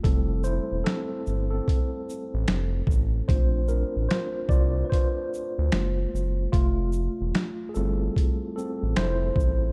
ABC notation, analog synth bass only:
X:1
M:4/4
L:1/16
Q:"Swing 16ths" 1/4=74
K:F
V:1 name="Analog synth bass" clef=bass
F,,,3 E,,, z2 G,,,2 z3 A,,, F,,,2 A,,,2 | B,,,3 A,,, z2 C,,2 z3 D,, _G,,,2 G,,,2 | F,,,3 E,,, z2 G,,,2 z3 A,,, F,,,2 A,,,2 |]